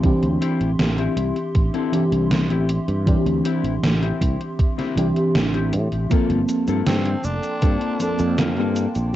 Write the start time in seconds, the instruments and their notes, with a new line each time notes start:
Already playing: fretless electric bass C2, clean electric guitar C4 E4 G4, ambient pad G4 E5 C6
0.02 fm electric piano E3 C4 D4 G4, kick, closed hi-hat
0.22 fretless electric bass D2, closed hi-hat
0.41 clean electric guitar C4 E4 G4, closed hi-hat
0.60 fretless electric bass A1, closed hi-hat
0.79 fretless electric bass A1, snare, closed hi-hat
0.98 clean electric guitar C4 E4 G4, closed hi-hat
1.17 fretless electric bass C2, closed hi-hat
1.36 closed hi-hat
1.55 fretless electric bass A1, kick, closed hi-hat
1.74 clean electric guitar C4 E4 A4, closed hi-hat
1.92 fm electric piano E3 C4 D4 G4, closed hi-hat
2.12 fretless electric bass C2, closed hi-hat
2.31 snare, closed hi-hat
2.50 fretless electric bass A1, clean electric guitar C4 E4 G4, closed hi-hat
2.69 closed hi-hat
2.88 fretless electric bass G2, muted clean electric guitar stroke, closed hi-hat
3.05 fm electric piano E3 C4 D4 G4, kick, closed hi-hat
3.26 fretless electric bass D2, closed hi-hat
3.45 clean electric guitar C4 E4 G4, closed hi-hat
3.64 fretless electric bass A1, closed hi-hat
3.83 fretless electric bass A1, snare, closed hi-hat
4.02 clean electric guitar C4 E4 G4, closed hi-hat
4.21 fretless electric bass C2, kick, closed hi-hat
4.41 closed hi-hat
4.59 kick, closed hi-hat
4.78 clean electric guitar C4 E4 G4, snare, closed hi-hat
4.95 fretless electric bass C2, fm electric piano E3 C4 D4 G4, closed hi-hat
5.16 closed hi-hat
5.35 fretless electric bass A1, muted clean electric guitar stroke, snare, closed hi-hat
5.54 clean electric guitar C4 E4 G4, closed hi-hat
5.73 fretless electric bass A2, closed hi-hat
5.92 fretless electric bass A1, muted clean electric guitar stroke, closed hi-hat
6.09 fm electric piano F3 A#3 C4 A4, clean electric guitar A#3 C4 F4 A4, ambient pad A#3 G5 A5 C6, muted fretless electric bass stroke, kick, closed hi-hat, cabasa
6.30 fretless electric bass G1, closed hi-hat
6.49 closed hi-hat, cabasa
6.68 fretless electric bass G2, clean electric guitar A#3 C4 F4 A4, closed hi-hat, cabasa
6.87 fretless electric bass G2, tenor saxophone C4, snare, closed hi-hat, cabasa
7.06 closed hi-hat
7.24 fretless electric bass F1, tenor saxophone D4, cabasa
7.44 closed hi-hat, cabasa
7.62 fretless electric bass G2, clean electric guitar A#3 C4 F4 A4, kick, closed hi-hat, cabasa
7.81 closed hi-hat
8.00 fm electric piano F3 A#3 C4 A4, tenor saxophone D4, closed hi-hat, cabasa
8.19 fretless electric bass F2, closed hi-hat, cabasa
8.38 tenor saxophone A#3, snare, closed hi-hat, cabasa
8.57 fretless electric bass G2, clean electric guitar A#3 C4 F4 A4, closed hi-hat
8.76 closed hi-hat, cabasa
8.95 fretless electric bass A#1, closed hi-hat, cabasa